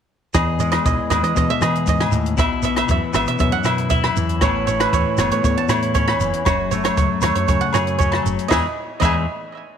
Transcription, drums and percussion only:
0.34 kick, cross-stick, closed hi-hat, low agogo, shekere
0.59 closed hi-hat, shekere
0.72 cross-stick, closed hi-hat, low agogo
0.86 kick, closed hi-hat, shekere
1.11 cross-stick, closed hi-hat, low agogo, shekere
1.24 closed hi-hat, shekere
1.36 kick, closed hi-hat, shekere
1.62 cross-stick, closed hi-hat, low agogo, shekere
1.75 closed hi-hat
1.87 kick, closed hi-hat, shekere
2.01 cross-stick, low agogo
2.12 closed hi-hat, shekere
2.26 closed hi-hat
2.37 kick, cross-stick, closed hi-hat, low agogo, shekere
2.63 closed hi-hat, shekere
2.76 cross-stick, closed hi-hat, low agogo
2.88 kick, closed hi-hat, shekere
3.14 cross-stick, closed hi-hat, low agogo, shekere
3.27 closed hi-hat, shekere
3.39 kick, closed hi-hat, shekere
3.64 cross-stick, closed hi-hat, low agogo, shekere
3.78 closed hi-hat
3.90 kick, closed hi-hat, shekere
4.04 cross-stick, low agogo
4.16 closed hi-hat, shekere
4.29 closed hi-hat
4.41 kick, cross-stick, closed hi-hat, low agogo, shekere
4.68 closed hi-hat, shekere
4.80 cross-stick, closed hi-hat, low agogo
4.93 kick, closed hi-hat, shekere
5.17 cross-stick, closed hi-hat, low agogo, shekere
5.31 closed hi-hat, shekere
5.44 kick, closed hi-hat, shekere
5.69 cross-stick, closed hi-hat, low agogo, shekere
5.82 closed hi-hat
5.95 kick, closed hi-hat, shekere
6.08 cross-stick, low agogo
6.20 closed hi-hat, shekere
6.33 closed hi-hat
6.45 kick, cross-stick, closed hi-hat, low agogo, shekere
6.72 closed hi-hat, shekere
6.84 cross-stick, closed hi-hat, low agogo
6.97 kick, closed hi-hat, shekere
7.22 cross-stick, closed hi-hat, low agogo, shekere
7.36 closed hi-hat
7.48 kick, closed hi-hat, shekere
7.73 cross-stick, closed hi-hat, low agogo, shekere
7.87 closed hi-hat, shekere
8.00 kick, closed hi-hat, shekere
8.12 cross-stick, low agogo
8.26 closed hi-hat, shekere
8.39 closed hi-hat, shekere
8.51 kick, snare, low agogo, shekere
9.02 kick, crash, low agogo, shekere

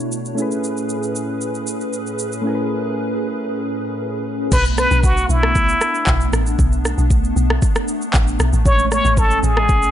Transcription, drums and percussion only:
0.00 shaker
0.12 shaker
0.25 shaker
0.38 shaker
0.51 shaker
0.64 shaker
0.77 shaker
0.89 shaker
1.03 shaker
1.15 shaker
1.41 shaker
1.55 shaker
1.67 shaker
1.81 shaker
1.93 shaker
2.07 shaker
2.19 shaker
2.32 shaker
4.52 kick, crash, shaker
4.65 shaker
4.78 cross-stick, shaker
4.91 shaker
5.03 kick, shaker
5.17 shaker
5.30 shaker
5.43 cross-stick
5.55 kick, shaker
5.69 shaker
5.81 cross-stick, shaker
5.95 shaker
6.07 kick, clap, shaker
6.21 shaker
6.33 cross-stick, shaker
6.46 shaker
6.59 kick, shaker
6.72 shaker
6.85 cross-stick, shaker
6.98 shaker
7.10 kick, shaker
7.24 shaker
7.37 shaker
7.50 cross-stick
7.62 kick, shaker
7.76 cross-stick, shaker
7.88 shaker
8.02 shaker
8.14 kick, clap, shaker
8.27 shaker
8.40 cross-stick, shaker
8.53 shaker
8.66 kick, shaker
8.79 shaker
8.92 cross-stick, shaker
9.05 shaker
9.17 kick, shaker
9.31 shaker
9.43 shaker
9.57 cross-stick
9.69 kick, shaker
9.82 shaker

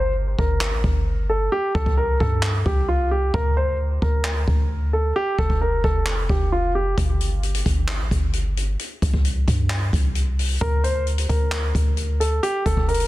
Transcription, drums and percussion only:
0.39 kick
0.61 clap
0.84 kick
1.75 kick
1.86 kick
2.20 kick
2.43 clap
2.66 kick
3.34 kick
4.02 kick
4.25 clap
4.48 kick
5.38 kick
5.50 kick
5.84 kick
6.07 clap
6.29 kick
6.98 kick, closed hi-hat
7.21 closed hi-hat
7.43 closed hi-hat
7.55 closed hi-hat
7.66 kick, closed hi-hat
7.89 clap, closed hi-hat
8.11 kick, closed hi-hat
8.33 closed hi-hat
8.57 closed hi-hat
8.79 closed hi-hat
9.02 kick, closed hi-hat
9.13 kick
9.25 closed hi-hat
9.48 kick, closed hi-hat
9.70 clap, closed hi-hat
9.93 kick, closed hi-hat
10.15 closed hi-hat
10.39 open hi-hat
10.61 kick, closed hi-hat
10.84 closed hi-hat
11.07 closed hi-hat
11.18 closed hi-hat
11.29 kick, closed hi-hat
11.52 clap, closed hi-hat
11.75 kick, closed hi-hat
11.97 closed hi-hat
12.21 closed hi-hat
12.43 closed hi-hat
12.66 kick, closed hi-hat
12.77 kick
12.89 closed hi-hat
12.94 closed hi-hat
13.00 closed hi-hat

